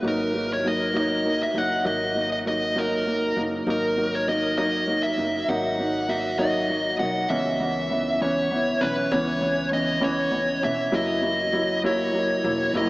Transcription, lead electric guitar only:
0.08 A#4
0.53 C#5
0.67 D#5
0.97 D#5
1.43 E5
1.58 F#5
1.86 D#5
2.32 D#5
2.48 D#5
2.78 A#4
3.70 A#4
4.15 C#5
4.29 D#5
4.58 D#5
5.03 E5
5.49 F#5
6.10 E5
6.39 D#5
6.99 F#5
7.29 E5
8.22 C#5
8.81 B4
9.12 C#5
9.73 D#5
10.04 C#5
10.64 E5
10.95 D#5
11.86 C#5
12.77 D#5

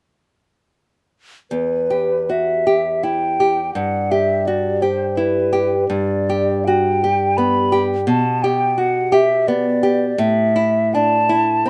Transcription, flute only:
1.51 B4
2.30 E5
3.04 G5
3.75 F#5
4.11 E5
4.46 D5
4.82 C5
5.17 B4
5.88 D5
6.65 G5
7.37 B5
8.08 A5
8.43 G5
8.79 F#5
9.14 E5
9.47 D5
10.19 E5
10.94 A5

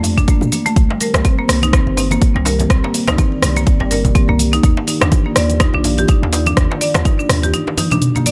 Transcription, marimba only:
0.18 D4
0.28 A#3
0.52 A#3
0.66 A3
0.90 G3
1.01 A#4
1.25 C4
1.39 A#3
1.63 D#4
1.74 C4
1.98 C4
2.12 A#3
2.36 G3
2.46 A#4
2.70 C4
2.84 A#3
3.08 D#4
3.19 C4
3.43 C4
3.57 A#3
3.81 G3
3.91 A#4
4.15 C4
4.29 A#3
4.53 D#4
4.63 D#4
4.88 D#4
5.02 D4
5.26 A#3
5.36 D5
5.61 D#4
5.74 D4
5.99 G4
6.09 D#4
6.33 D#4
6.47 D4
6.71 A#3
6.81 D5
7.05 D#4
7.19 D4
7.43 G4
7.54 D#4
7.78 D#4
7.92 D4
8.16 A#3
8.26 D5

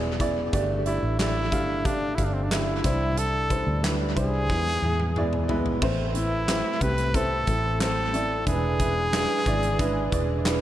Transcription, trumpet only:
Already playing: G#4
0.87 E4
1.20 E4
1.86 D4
2.15 E4
2.25 D4
2.34 C4
2.43 D4
2.53 E4
3.19 A4
4.17 G#4
6.15 E4
6.82 B4
7.15 A4
7.81 A4
8.48 G#4

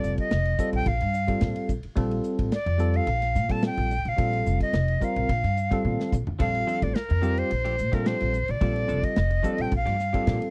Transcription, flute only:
Already playing: D5
0.19 D#5
0.75 G5
0.87 F5
2.53 D5
2.96 F5
3.51 A5
3.66 G5
4.09 F5
4.62 D#5
5.04 F5
6.40 F5
6.83 D5
6.96 A#4
7.38 C5
7.94 A#4
8.07 C5
8.51 D5
9.04 D#5
9.61 G5
9.76 F5

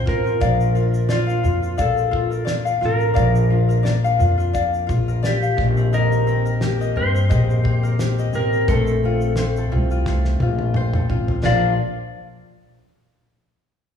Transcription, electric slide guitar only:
0.08 A#4
1.12 F4
1.82 A4
2.85 A#4
5.27 G4
5.94 A#4
6.97 C5
8.35 A#4
8.69 A4
11.46 D5

